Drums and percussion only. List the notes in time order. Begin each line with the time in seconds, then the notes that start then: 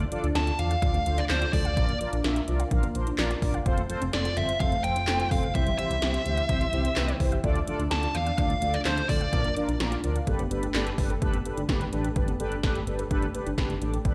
0.00 closed hi-hat
0.12 closed hi-hat
0.24 closed hi-hat
0.35 snare, closed hi-hat
0.47 closed hi-hat
0.59 closed hi-hat
0.71 closed hi-hat
0.82 kick, closed hi-hat
0.94 closed hi-hat
1.06 closed hi-hat
1.18 closed hi-hat
1.30 snare, clap, closed hi-hat
1.42 closed hi-hat
1.53 kick, open hi-hat
1.65 closed hi-hat
1.77 kick, closed hi-hat
1.89 closed hi-hat
2.01 closed hi-hat
2.13 closed hi-hat
2.24 snare, closed hi-hat
2.36 closed hi-hat
2.48 closed hi-hat
2.60 closed hi-hat
2.71 kick, closed hi-hat
2.83 closed hi-hat
2.95 closed hi-hat
3.07 closed hi-hat
3.19 snare, clap, closed hi-hat
3.31 closed hi-hat
3.42 kick, open hi-hat
3.54 closed hi-hat
3.66 kick, closed hi-hat
3.78 closed hi-hat
3.90 closed hi-hat
4.02 closed hi-hat
4.13 snare, closed hi-hat
4.25 closed hi-hat
4.37 closed hi-hat
4.49 closed hi-hat
4.60 kick, closed hi-hat
4.72 closed hi-hat
4.84 closed hi-hat
4.96 closed hi-hat
5.08 snare, clap, closed hi-hat
5.20 closed hi-hat
5.31 kick, open hi-hat
5.43 closed hi-hat
5.55 kick, closed hi-hat
5.67 closed hi-hat
5.79 closed hi-hat
5.91 closed hi-hat
6.02 snare, closed hi-hat
6.14 closed hi-hat
6.26 closed hi-hat
6.37 closed hi-hat
6.49 kick, closed hi-hat
6.61 closed hi-hat
6.73 closed hi-hat
6.85 closed hi-hat
6.96 snare, clap, closed hi-hat
7.09 closed hi-hat
7.20 kick, open hi-hat
7.32 closed hi-hat
7.44 kick, closed hi-hat
7.55 closed hi-hat
7.67 closed hi-hat
7.80 closed hi-hat
7.91 snare, closed hi-hat
8.03 closed hi-hat
8.15 closed hi-hat
8.27 closed hi-hat
8.38 kick, closed hi-hat
8.50 closed hi-hat
8.62 closed hi-hat
8.74 closed hi-hat
8.85 snare, clap, closed hi-hat
8.98 closed hi-hat
9.09 kick, open hi-hat
9.21 closed hi-hat
9.33 kick, closed hi-hat
9.45 closed hi-hat
9.57 closed hi-hat
9.69 closed hi-hat
9.80 snare, closed hi-hat
9.92 closed hi-hat
10.04 closed hi-hat
10.16 closed hi-hat
10.27 kick, closed hi-hat
10.39 closed hi-hat
10.51 closed hi-hat
10.63 closed hi-hat
10.75 snare, clap, closed hi-hat
10.87 closed hi-hat
10.98 kick, open hi-hat
11.10 closed hi-hat
11.22 kick, closed hi-hat
11.34 closed hi-hat
11.46 closed hi-hat
11.57 closed hi-hat
11.69 kick, snare, closed hi-hat
11.81 closed hi-hat
11.93 closed hi-hat
12.04 closed hi-hat
12.16 kick, closed hi-hat
12.28 closed hi-hat
12.40 closed hi-hat
12.52 closed hi-hat
12.63 kick, snare, closed hi-hat
12.76 closed hi-hat
12.87 closed hi-hat
12.99 closed hi-hat
13.11 kick, closed hi-hat
13.22 closed hi-hat
13.35 closed hi-hat
13.47 closed hi-hat
13.58 kick, snare, closed hi-hat
13.70 closed hi-hat
13.82 closed hi-hat
13.94 closed hi-hat
14.05 kick, closed hi-hat